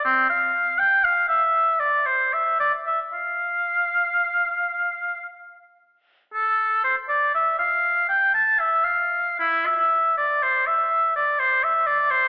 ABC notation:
X:1
M:3/4
L:1/16
Q:1/4=59
K:F
V:1 name="Oboe"
C f2 g f e2 d c e d e | f8 z4 | A2 c d e f2 g a e f2 | E e2 d c e2 d c e d c |]